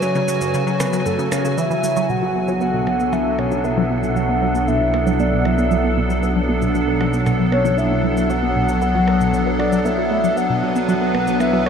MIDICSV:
0, 0, Header, 1, 8, 480
1, 0, Start_track
1, 0, Key_signature, 2, "minor"
1, 0, Tempo, 517241
1, 22, Time_signature, 4, 2, 24, 8
1, 10851, End_track
2, 0, Start_track
2, 0, Title_t, "Soft synth lead"
2, 0, Program_c, 0, 80
2, 19, Note_on_c, 0, 73, 99
2, 741, Note_on_c, 0, 71, 85
2, 755, Note_off_c, 0, 73, 0
2, 976, Note_off_c, 0, 71, 0
2, 982, Note_on_c, 0, 69, 84
2, 1205, Note_off_c, 0, 69, 0
2, 1223, Note_on_c, 0, 73, 91
2, 1466, Note_on_c, 0, 76, 103
2, 1480, Note_off_c, 0, 73, 0
2, 1945, Note_on_c, 0, 78, 119
2, 1959, Note_off_c, 0, 76, 0
2, 2419, Note_off_c, 0, 78, 0
2, 2425, Note_on_c, 0, 78, 106
2, 2906, Note_on_c, 0, 76, 109
2, 2920, Note_off_c, 0, 78, 0
2, 3144, Note_on_c, 0, 73, 95
2, 3158, Note_off_c, 0, 76, 0
2, 3383, Note_on_c, 0, 76, 98
2, 3397, Note_off_c, 0, 73, 0
2, 3863, Note_on_c, 0, 78, 112
2, 3877, Note_off_c, 0, 76, 0
2, 4342, Note_on_c, 0, 76, 96
2, 4356, Note_off_c, 0, 78, 0
2, 4823, Note_on_c, 0, 74, 92
2, 4837, Note_off_c, 0, 76, 0
2, 5064, Note_on_c, 0, 76, 91
2, 5078, Note_off_c, 0, 74, 0
2, 5543, Note_off_c, 0, 76, 0
2, 6978, Note_on_c, 0, 73, 85
2, 7219, Note_on_c, 0, 76, 93
2, 7233, Note_off_c, 0, 73, 0
2, 7698, Note_on_c, 0, 78, 115
2, 7712, Note_off_c, 0, 76, 0
2, 8894, Note_off_c, 0, 78, 0
2, 8900, Note_on_c, 0, 74, 89
2, 9139, Note_on_c, 0, 76, 95
2, 9153, Note_off_c, 0, 74, 0
2, 9620, Note_on_c, 0, 78, 105
2, 9634, Note_off_c, 0, 76, 0
2, 10098, Note_off_c, 0, 78, 0
2, 10103, Note_on_c, 0, 78, 100
2, 10549, Note_off_c, 0, 78, 0
2, 10583, Note_on_c, 0, 76, 105
2, 10806, Note_off_c, 0, 76, 0
2, 10823, Note_on_c, 0, 73, 103
2, 10851, Note_off_c, 0, 73, 0
2, 10851, End_track
3, 0, Start_track
3, 0, Title_t, "Synth texture"
3, 0, Program_c, 1, 99
3, 1942, Note_on_c, 1, 78, 76
3, 1943, Note_on_c, 1, 54, 80
3, 9619, Note_on_c, 1, 71, 80
3, 9646, Note_off_c, 1, 78, 0
3, 10851, Note_off_c, 1, 54, 0
3, 10851, Note_off_c, 1, 71, 0
3, 10851, End_track
4, 0, Start_track
4, 0, Title_t, "Ambient pad"
4, 0, Program_c, 2, 92
4, 0, Note_on_c, 2, 49, 76
4, 0, Note_on_c, 2, 54, 70
4, 0, Note_on_c, 2, 66, 71
4, 0, Note_on_c, 2, 80, 85
4, 1905, Note_off_c, 2, 49, 0
4, 1905, Note_off_c, 2, 54, 0
4, 1905, Note_off_c, 2, 66, 0
4, 1930, Note_off_c, 2, 80, 0
4, 1941, Note_on_c, 2, 69, 87
4, 1942, Note_on_c, 2, 59, 73
4, 1942, Note_on_c, 2, 62, 70
4, 1943, Note_on_c, 2, 54, 76
4, 9609, Note_off_c, 2, 69, 0
4, 9623, Note_on_c, 2, 71, 86
4, 10851, Note_off_c, 2, 54, 0
4, 10851, Note_off_c, 2, 59, 0
4, 10851, Note_off_c, 2, 62, 0
4, 10851, Note_off_c, 2, 71, 0
4, 10851, End_track
5, 0, Start_track
5, 0, Title_t, "Synth arpeggio sound"
5, 0, Program_c, 3, 84
5, 22, Note_on_c, 3, 54, 81
5, 98, Note_off_c, 3, 54, 0
5, 142, Note_on_c, 3, 49, 96
5, 188, Note_off_c, 3, 49, 0
5, 262, Note_on_c, 3, 54, 75
5, 338, Note_off_c, 3, 54, 0
5, 382, Note_on_c, 3, 42, 73
5, 496, Note_off_c, 3, 42, 0
5, 502, Note_on_c, 3, 49, 81
5, 578, Note_off_c, 3, 49, 0
5, 621, Note_on_c, 3, 54, 73
5, 698, Note_off_c, 3, 54, 0
5, 742, Note_on_c, 3, 49, 96
5, 788, Note_off_c, 3, 49, 0
5, 862, Note_on_c, 3, 54, 77
5, 938, Note_off_c, 3, 54, 0
5, 982, Note_on_c, 3, 42, 80
5, 1096, Note_off_c, 3, 42, 0
5, 1102, Note_on_c, 3, 49, 76
5, 1178, Note_off_c, 3, 49, 0
5, 1222, Note_on_c, 3, 49, 74
5, 1332, Note_off_c, 3, 49, 0
5, 1343, Note_on_c, 3, 49, 75
5, 1457, Note_off_c, 3, 49, 0
5, 1462, Note_on_c, 3, 52, 78
5, 1538, Note_off_c, 3, 52, 0
5, 1583, Note_on_c, 3, 52, 72
5, 1628, Note_off_c, 3, 52, 0
5, 1704, Note_on_c, 3, 54, 74
5, 1749, Note_off_c, 3, 54, 0
5, 1824, Note_on_c, 3, 54, 93
5, 1869, Note_off_c, 3, 54, 0
5, 1944, Note_on_c, 3, 47, 78
5, 2057, Note_off_c, 3, 47, 0
5, 2065, Note_on_c, 3, 54, 74
5, 2140, Note_off_c, 3, 54, 0
5, 2185, Note_on_c, 3, 59, 74
5, 2260, Note_off_c, 3, 59, 0
5, 2304, Note_on_c, 3, 54, 99
5, 2349, Note_off_c, 3, 54, 0
5, 2419, Note_on_c, 3, 59, 84
5, 2497, Note_off_c, 3, 59, 0
5, 2542, Note_on_c, 3, 47, 73
5, 2656, Note_off_c, 3, 47, 0
5, 2662, Note_on_c, 3, 54, 77
5, 2738, Note_off_c, 3, 54, 0
5, 2782, Note_on_c, 3, 59, 74
5, 2858, Note_off_c, 3, 59, 0
5, 2902, Note_on_c, 3, 54, 103
5, 2948, Note_off_c, 3, 54, 0
5, 3022, Note_on_c, 3, 59, 76
5, 3098, Note_off_c, 3, 59, 0
5, 3142, Note_on_c, 3, 47, 76
5, 3256, Note_off_c, 3, 47, 0
5, 3262, Note_on_c, 3, 54, 77
5, 3338, Note_off_c, 3, 54, 0
5, 3381, Note_on_c, 3, 59, 84
5, 3457, Note_off_c, 3, 59, 0
5, 3501, Note_on_c, 3, 54, 102
5, 3547, Note_off_c, 3, 54, 0
5, 3622, Note_on_c, 3, 59, 73
5, 3698, Note_off_c, 3, 59, 0
5, 3741, Note_on_c, 3, 47, 72
5, 3856, Note_off_c, 3, 47, 0
5, 3860, Note_on_c, 3, 54, 78
5, 3937, Note_off_c, 3, 54, 0
5, 3980, Note_on_c, 3, 59, 72
5, 4057, Note_off_c, 3, 59, 0
5, 4101, Note_on_c, 3, 54, 98
5, 4147, Note_off_c, 3, 54, 0
5, 4220, Note_on_c, 3, 59, 71
5, 4297, Note_off_c, 3, 59, 0
5, 4342, Note_on_c, 3, 47, 80
5, 4456, Note_off_c, 3, 47, 0
5, 4461, Note_on_c, 3, 54, 75
5, 4537, Note_off_c, 3, 54, 0
5, 4581, Note_on_c, 3, 59, 77
5, 4658, Note_off_c, 3, 59, 0
5, 4701, Note_on_c, 3, 54, 99
5, 4747, Note_off_c, 3, 54, 0
5, 4822, Note_on_c, 3, 59, 80
5, 4898, Note_off_c, 3, 59, 0
5, 4943, Note_on_c, 3, 47, 77
5, 5057, Note_off_c, 3, 47, 0
5, 5063, Note_on_c, 3, 54, 71
5, 5139, Note_off_c, 3, 54, 0
5, 5182, Note_on_c, 3, 59, 76
5, 5258, Note_off_c, 3, 59, 0
5, 5301, Note_on_c, 3, 54, 100
5, 5347, Note_off_c, 3, 54, 0
5, 5420, Note_on_c, 3, 59, 76
5, 5497, Note_off_c, 3, 59, 0
5, 5543, Note_on_c, 3, 47, 78
5, 5657, Note_off_c, 3, 47, 0
5, 5661, Note_on_c, 3, 54, 72
5, 5738, Note_off_c, 3, 54, 0
5, 5782, Note_on_c, 3, 59, 80
5, 5858, Note_off_c, 3, 59, 0
5, 5902, Note_on_c, 3, 54, 100
5, 5948, Note_off_c, 3, 54, 0
5, 6021, Note_on_c, 3, 59, 72
5, 6098, Note_off_c, 3, 59, 0
5, 6142, Note_on_c, 3, 47, 74
5, 6256, Note_off_c, 3, 47, 0
5, 6262, Note_on_c, 3, 54, 82
5, 6338, Note_off_c, 3, 54, 0
5, 6383, Note_on_c, 3, 59, 73
5, 6459, Note_off_c, 3, 59, 0
5, 6502, Note_on_c, 3, 54, 99
5, 6548, Note_off_c, 3, 54, 0
5, 6622, Note_on_c, 3, 59, 73
5, 6698, Note_off_c, 3, 59, 0
5, 6742, Note_on_c, 3, 47, 85
5, 6856, Note_off_c, 3, 47, 0
5, 6861, Note_on_c, 3, 54, 75
5, 6938, Note_off_c, 3, 54, 0
5, 6980, Note_on_c, 3, 59, 76
5, 7057, Note_off_c, 3, 59, 0
5, 7099, Note_on_c, 3, 54, 98
5, 7146, Note_off_c, 3, 54, 0
5, 7219, Note_on_c, 3, 59, 81
5, 7297, Note_off_c, 3, 59, 0
5, 7340, Note_on_c, 3, 47, 75
5, 7455, Note_off_c, 3, 47, 0
5, 7460, Note_on_c, 3, 54, 75
5, 7537, Note_off_c, 3, 54, 0
5, 7580, Note_on_c, 3, 59, 73
5, 7657, Note_off_c, 3, 59, 0
5, 7700, Note_on_c, 3, 54, 97
5, 7747, Note_off_c, 3, 54, 0
5, 7822, Note_on_c, 3, 59, 75
5, 7898, Note_off_c, 3, 59, 0
5, 7943, Note_on_c, 3, 47, 74
5, 8057, Note_off_c, 3, 47, 0
5, 8063, Note_on_c, 3, 54, 77
5, 8139, Note_off_c, 3, 54, 0
5, 8182, Note_on_c, 3, 59, 85
5, 8258, Note_off_c, 3, 59, 0
5, 8303, Note_on_c, 3, 54, 99
5, 8348, Note_off_c, 3, 54, 0
5, 8424, Note_on_c, 3, 59, 73
5, 8499, Note_off_c, 3, 59, 0
5, 8544, Note_on_c, 3, 47, 77
5, 8657, Note_off_c, 3, 47, 0
5, 8663, Note_on_c, 3, 54, 84
5, 8739, Note_off_c, 3, 54, 0
5, 8782, Note_on_c, 3, 59, 78
5, 8858, Note_off_c, 3, 59, 0
5, 8903, Note_on_c, 3, 66, 77
5, 9016, Note_off_c, 3, 66, 0
5, 9023, Note_on_c, 3, 54, 73
5, 9099, Note_off_c, 3, 54, 0
5, 9142, Note_on_c, 3, 59, 84
5, 9188, Note_off_c, 3, 59, 0
5, 9261, Note_on_c, 3, 66, 74
5, 9376, Note_off_c, 3, 66, 0
5, 9381, Note_on_c, 3, 57, 99
5, 9458, Note_off_c, 3, 57, 0
5, 9502, Note_on_c, 3, 54, 74
5, 9548, Note_off_c, 3, 54, 0
5, 9621, Note_on_c, 3, 59, 81
5, 9698, Note_off_c, 3, 59, 0
5, 9743, Note_on_c, 3, 47, 76
5, 9856, Note_off_c, 3, 47, 0
5, 9862, Note_on_c, 3, 54, 75
5, 9938, Note_off_c, 3, 54, 0
5, 9981, Note_on_c, 3, 59, 77
5, 10058, Note_off_c, 3, 59, 0
5, 10102, Note_on_c, 3, 54, 103
5, 10148, Note_off_c, 3, 54, 0
5, 10220, Note_on_c, 3, 59, 73
5, 10297, Note_off_c, 3, 59, 0
5, 10342, Note_on_c, 3, 47, 75
5, 10456, Note_off_c, 3, 47, 0
5, 10460, Note_on_c, 3, 54, 74
5, 10537, Note_off_c, 3, 54, 0
5, 10579, Note_on_c, 3, 59, 85
5, 10657, Note_off_c, 3, 59, 0
5, 10700, Note_on_c, 3, 54, 105
5, 10747, Note_off_c, 3, 54, 0
5, 10821, Note_on_c, 3, 59, 73
5, 10851, Note_off_c, 3, 59, 0
5, 10851, End_track
6, 0, Start_track
6, 0, Title_t, "Analog synth bass"
6, 0, Program_c, 4, 38
6, 1941, Note_on_c, 4, 35, 90
6, 9598, Note_off_c, 4, 35, 0
6, 9621, Note_on_c, 4, 35, 84
6, 10851, Note_off_c, 4, 35, 0
6, 10851, End_track
7, 0, Start_track
7, 0, Title_t, "Percussion blips"
7, 744, Note_on_c, 9, 61, 77
7, 836, Note_off_c, 9, 61, 0
7, 1224, Note_on_c, 9, 61, 72
7, 1317, Note_off_c, 9, 61, 0
7, 2663, Note_on_c, 9, 61, 80
7, 2756, Note_off_c, 9, 61, 0
7, 2903, Note_on_c, 9, 61, 71
7, 2996, Note_off_c, 9, 61, 0
7, 3143, Note_on_c, 9, 61, 78
7, 3235, Note_off_c, 9, 61, 0
7, 4582, Note_on_c, 9, 61, 79
7, 4675, Note_off_c, 9, 61, 0
7, 5060, Note_on_c, 9, 61, 77
7, 5153, Note_off_c, 9, 61, 0
7, 6502, Note_on_c, 9, 61, 79
7, 6595, Note_off_c, 9, 61, 0
7, 6741, Note_on_c, 9, 61, 71
7, 6834, Note_off_c, 9, 61, 0
7, 6981, Note_on_c, 9, 61, 77
7, 7074, Note_off_c, 9, 61, 0
7, 8422, Note_on_c, 9, 61, 78
7, 8515, Note_off_c, 9, 61, 0
7, 8905, Note_on_c, 9, 61, 73
7, 8998, Note_off_c, 9, 61, 0
7, 10343, Note_on_c, 9, 61, 74
7, 10436, Note_off_c, 9, 61, 0
7, 10582, Note_on_c, 9, 61, 65
7, 10675, Note_off_c, 9, 61, 0
7, 10851, End_track
8, 0, Start_track
8, 0, Title_t, "Drums"
8, 21, Note_on_c, 9, 69, 48
8, 114, Note_off_c, 9, 69, 0
8, 141, Note_on_c, 9, 69, 23
8, 234, Note_off_c, 9, 69, 0
8, 262, Note_on_c, 9, 69, 88
8, 355, Note_off_c, 9, 69, 0
8, 382, Note_on_c, 9, 69, 51
8, 475, Note_off_c, 9, 69, 0
8, 503, Note_on_c, 9, 69, 48
8, 595, Note_off_c, 9, 69, 0
8, 625, Note_on_c, 9, 69, 24
8, 718, Note_off_c, 9, 69, 0
8, 744, Note_on_c, 9, 69, 85
8, 836, Note_off_c, 9, 69, 0
8, 864, Note_on_c, 9, 69, 47
8, 956, Note_off_c, 9, 69, 0
8, 984, Note_on_c, 9, 69, 48
8, 1077, Note_off_c, 9, 69, 0
8, 1105, Note_on_c, 9, 69, 25
8, 1198, Note_off_c, 9, 69, 0
8, 1224, Note_on_c, 9, 69, 79
8, 1317, Note_off_c, 9, 69, 0
8, 1346, Note_on_c, 9, 69, 48
8, 1439, Note_off_c, 9, 69, 0
8, 1465, Note_on_c, 9, 69, 50
8, 1558, Note_off_c, 9, 69, 0
8, 1586, Note_on_c, 9, 69, 24
8, 1679, Note_off_c, 9, 69, 0
8, 1705, Note_on_c, 9, 69, 86
8, 1798, Note_off_c, 9, 69, 0
8, 1823, Note_on_c, 9, 69, 46
8, 1916, Note_off_c, 9, 69, 0
8, 1944, Note_on_c, 9, 69, 50
8, 2037, Note_off_c, 9, 69, 0
8, 2301, Note_on_c, 9, 69, 67
8, 2394, Note_off_c, 9, 69, 0
8, 2421, Note_on_c, 9, 69, 50
8, 2514, Note_off_c, 9, 69, 0
8, 2783, Note_on_c, 9, 69, 66
8, 2876, Note_off_c, 9, 69, 0
8, 2903, Note_on_c, 9, 69, 52
8, 2996, Note_off_c, 9, 69, 0
8, 3262, Note_on_c, 9, 69, 64
8, 3355, Note_off_c, 9, 69, 0
8, 3382, Note_on_c, 9, 69, 50
8, 3475, Note_off_c, 9, 69, 0
8, 3744, Note_on_c, 9, 69, 63
8, 3837, Note_off_c, 9, 69, 0
8, 3864, Note_on_c, 9, 69, 54
8, 3957, Note_off_c, 9, 69, 0
8, 4222, Note_on_c, 9, 69, 69
8, 4315, Note_off_c, 9, 69, 0
8, 4342, Note_on_c, 9, 69, 53
8, 4435, Note_off_c, 9, 69, 0
8, 4704, Note_on_c, 9, 69, 66
8, 4797, Note_off_c, 9, 69, 0
8, 4822, Note_on_c, 9, 69, 51
8, 4915, Note_off_c, 9, 69, 0
8, 5181, Note_on_c, 9, 69, 64
8, 5274, Note_off_c, 9, 69, 0
8, 5301, Note_on_c, 9, 69, 53
8, 5394, Note_off_c, 9, 69, 0
8, 5661, Note_on_c, 9, 69, 63
8, 5754, Note_off_c, 9, 69, 0
8, 5781, Note_on_c, 9, 69, 54
8, 5874, Note_off_c, 9, 69, 0
8, 6142, Note_on_c, 9, 69, 70
8, 6234, Note_off_c, 9, 69, 0
8, 6263, Note_on_c, 9, 69, 52
8, 6356, Note_off_c, 9, 69, 0
8, 6621, Note_on_c, 9, 69, 67
8, 6714, Note_off_c, 9, 69, 0
8, 6741, Note_on_c, 9, 69, 55
8, 6834, Note_off_c, 9, 69, 0
8, 7101, Note_on_c, 9, 69, 65
8, 7194, Note_off_c, 9, 69, 0
8, 7222, Note_on_c, 9, 69, 55
8, 7315, Note_off_c, 9, 69, 0
8, 7582, Note_on_c, 9, 69, 67
8, 7675, Note_off_c, 9, 69, 0
8, 7702, Note_on_c, 9, 69, 55
8, 7795, Note_off_c, 9, 69, 0
8, 8061, Note_on_c, 9, 69, 67
8, 8154, Note_off_c, 9, 69, 0
8, 8182, Note_on_c, 9, 69, 53
8, 8275, Note_off_c, 9, 69, 0
8, 8545, Note_on_c, 9, 69, 68
8, 8638, Note_off_c, 9, 69, 0
8, 8665, Note_on_c, 9, 69, 53
8, 8757, Note_off_c, 9, 69, 0
8, 9025, Note_on_c, 9, 69, 66
8, 9118, Note_off_c, 9, 69, 0
8, 9146, Note_on_c, 9, 69, 56
8, 9238, Note_off_c, 9, 69, 0
8, 9504, Note_on_c, 9, 69, 63
8, 9597, Note_off_c, 9, 69, 0
8, 9625, Note_on_c, 9, 69, 50
8, 9718, Note_off_c, 9, 69, 0
8, 9982, Note_on_c, 9, 69, 66
8, 10075, Note_off_c, 9, 69, 0
8, 10103, Note_on_c, 9, 69, 50
8, 10196, Note_off_c, 9, 69, 0
8, 10463, Note_on_c, 9, 69, 64
8, 10555, Note_off_c, 9, 69, 0
8, 10582, Note_on_c, 9, 69, 51
8, 10675, Note_off_c, 9, 69, 0
8, 10851, End_track
0, 0, End_of_file